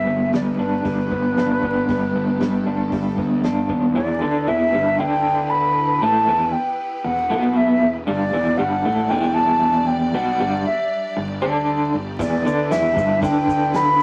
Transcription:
Already playing: clean electric guitar G3, string section B3 D4 G4 B4, flute E5
0.07 picked electric bass G1, clean electric guitar B3
0.33 picked electric bass D2, clean electric guitar G3, flute D5, snare, open hi-hat
0.59 picked electric bass G1, clean electric guitar D4, flute B4
0.85 picked electric bass G1, clean electric guitar G3, kick, open hi-hat
1.11 picked electric bass G1, clean electric guitar B3, kick
1.37 picked electric bass G1, clean electric guitar D4, snare, open hi-hat
1.63 picked electric bass G1, clean electric guitar B3, kick
1.88 picked electric bass G1, clean electric guitar G3, string section A4, kick, open hi-hat
2.15 picked electric bass G1, clean electric guitar B3
2.41 picked electric bass G2, clean electric guitar G3, snare, open hi-hat
2.66 picked electric bass G1, clean electric guitar D4
2.92 picked electric bass G1, clean electric guitar G3, kick, open hi-hat
3.18 picked electric bass D2, clean electric guitar B3, kick
3.43 picked electric bass G1, clean electric guitar D4, snare, open hi-hat
3.69 picked electric bass D#2, clean electric guitar B3, kick
3.94 picked electric bass E1, clean electric guitar E2 E3, string section B3 E4 G4 B4, flute D5
4.21 picked electric bass D2, clean electric guitar D3 D4
4.47 picked electric bass E1, clean electric guitar E2 E3, flute E5
4.74 picked electric bass G1, clean electric guitar G2 G3
4.99 picked electric bass D2, clean electric guitar D3 D4, flute G5
5.50 flute B5
6.02 picked electric bass A1, clean electric guitar A2 A3, flute A5
6.27 picked electric bass E1, clean electric guitar E2 E3
6.52 flute G5
7.04 picked electric bass E1, clean electric guitar E2, flute F#5
7.30 picked electric bass B1, clean electric guitar B2 B3
7.57 flute E5
7.82 picked electric bass E1, clean electric guitar E2
8.07 picked electric bass G1, clean electric guitar G2 G3, string section G3 D4 G4 D5, flute D5
8.33 picked electric bass E1, clean electric guitar E2 E3
8.58 picked electric bass G1, clean electric guitar G2 G3, flute F#5
8.85 picked electric bass A1, clean electric guitar A2 A3
9.10 picked electric bass E1, clean electric guitar E2 E3, flute G5
9.34 flute A5
9.87 flute G5
10.13 picked electric bass B1, clean electric guitar B2 B3, flute F#5
10.40 picked electric bass G1, clean electric guitar G2 G3
10.66 flute E5
11.17 picked electric bass G1, clean electric guitar G2
11.42 picked electric bass D2, clean electric guitar D3 D4
11.94 picked electric bass G1, clean electric guitar G2
12.19 picked electric bass E1, clean electric guitar E2 E3, string section B3 E4 B4, flute D5, kick, open hi-hat, shaker
12.45 picked electric bass D2, clean electric guitar D3 D4, shaker
12.71 picked electric bass E1, clean electric guitar E2 E3, flute E5, snare, open hi-hat, shaker
12.97 picked electric bass G1, clean electric guitar G2 G3, kick, shaker
13.22 picked electric bass D2, clean electric guitar D3 D4, flute G5, kick, open hi-hat, shaker
13.48 kick, shaker
13.74 flute B5, snare, open hi-hat, shaker

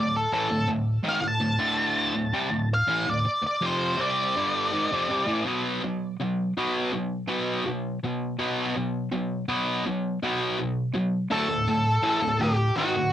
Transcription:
Already playing: distorted electric guitar D2 A2
0.00 lead electric guitar D5
0.17 lead electric guitar A4
0.33 distorted electric guitar A2 E3, lead electric guitar A4
0.51 distorted electric guitar D2 A2
0.68 distorted electric guitar D2 A2
1.04 distorted electric guitar G#2 D#3
1.09 lead electric guitar F5
1.21 distorted electric guitar D2 A2
1.28 lead electric guitar A5
1.40 distorted electric guitar D2 A2
1.59 distorted electric guitar D2 A2 D3
2.14 distorted electric guitar D2 A2
2.33 distorted electric guitar C3 G3
2.51 distorted electric guitar D2 A2
2.74 lead electric guitar F5
2.87 distorted electric guitar A2 E3
3.07 distorted electric guitar D2 A2, lead electric guitar D5
3.25 muted distorted electric guitar stroke
3.42 muted distorted electric guitar stroke
3.47 lead electric guitar D5
3.61 distorted electric guitar F2 C3 F3
3.66 lead electric guitar C5
3.97 distorted electric guitar C3 G3 C4, lead electric guitar D5
4.36 distorted electric guitar G2 D3 G3
4.72 distorted electric guitar G#2 D#3
4.92 distorted electric guitar F2 C3
5.09 distorted electric guitar C3 G3
5.26 distorted electric guitar A2 E3
5.45 distorted electric guitar B2 F#3 B3
5.84 distorted electric guitar B2 F#3
6.20 distorted electric guitar B2 F#3
6.57 distorted electric guitar B2 F#3 B3
6.93 distorted electric guitar B2 F#3
7.28 distorted electric guitar B2 F#3 B3
7.65 distorted electric guitar B2 F#3
8.03 distorted electric guitar B2 F#3
8.39 distorted electric guitar B2 F#3 B3
8.77 distorted electric guitar B2 F#3
9.12 distorted electric guitar B2 F#3
9.48 distorted electric guitar B2 F#3 B3
9.86 distorted electric guitar B2 F#3
10.22 distorted electric guitar B2 F#3 B3
10.59 distorted electric guitar B2 F#3
10.94 distorted electric guitar B2 F#3
11.30 distorted electric guitar D2 A2, lead electric guitar A4 A5
11.49 distorted electric guitar D2 A2
11.68 distorted electric guitar D2 A2
12.03 distorted electric guitar A2 E3
12.22 distorted electric guitar D2 A2
12.40 distorted electric guitar D2 A2, lead electric guitar G4 G5
12.77 distorted electric guitar G#2 D#3, lead electric guitar F#4 F#5
12.96 distorted electric guitar D2 A2

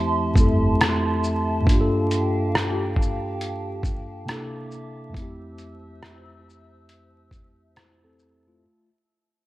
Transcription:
Already playing: tine electric piano F2 A3 C4 E4 G4, ambient pad F3 E5 A5 C6
0.34 fingered electric bass G1, tine electric piano F2 A3 C4, kick, shaker
0.39 tine electric piano E4 A4
0.81 cross-stick, closed hi-hat
1.24 shaker
1.61 tine electric piano G2 A#3
1.67 tine electric piano D4, ambient pad G4 F5 G5, kick, closed hi-hat
1.71 tine electric piano F4 G4
1.81 tine electric piano A4
2.11 closed hi-hat, shaker
2.55 cross-stick, closed hi-hat
2.96 kick
3.02 shaker
3.41 closed hi-hat
3.83 kick, shaker
4.25 tine electric piano C3 A#3 D4, ambient pad A#3 E5 D6, cross-stick, closed hi-hat
4.30 tine electric piano E4 A4
4.71 shaker
5.09 tine electric piano F2 A3
5.14 tine electric piano C4, ambient pad C5 E5 E6, kick, closed hi-hat
5.19 tine electric piano E4 G4
5.58 closed hi-hat, shaker
6.03 cross-stick, closed hi-hat
6.50 shaker
6.89 closed hi-hat
7.31 kick, closed hi-hat, shaker
7.76 tine electric piano E4 C5, cross-stick, closed hi-hat
8.04 tine electric piano C4 A4
8.19 shaker
8.48 tine electric piano A3 F4

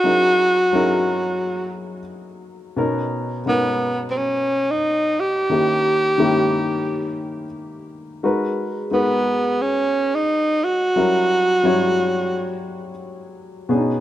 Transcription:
Already playing: tenor saxophone F#4
0.04 grand piano F#3 C#4 D#4 E4 G#4 A#4
0.73 grand piano F#3 C#4 D#4 E4 G#4 A#4
2.76 grand piano B2 B3 C#4 D#4 A#4
3.46 grand piano B2 B3 C#4 D#4 A#4, tenor saxophone B3
4.11 tenor saxophone C4
4.18 tenor saxophone C#4
4.71 tenor saxophone D#4
5.20 tenor saxophone G4
5.50 grand piano D#3 A#3 C#4 E4 G4
6.18 grand piano D#3 A#3 C#4 E4 G4
8.23 grand piano G#3 D#4 F#4 A#4 B4
8.91 grand piano G#3 D#4 F#4 A#4 B4, tenor saxophone B3
9.62 tenor saxophone C#4
10.15 tenor saxophone D#4
10.65 tenor saxophone F#4
10.96 grand piano F#3 G3 C#4 E4 A#4
11.63 grand piano F#3 G3 C#4 E4 C#5
13.69 grand piano B2 B3 C#4 D4 G#4
13.77 grand piano D#4

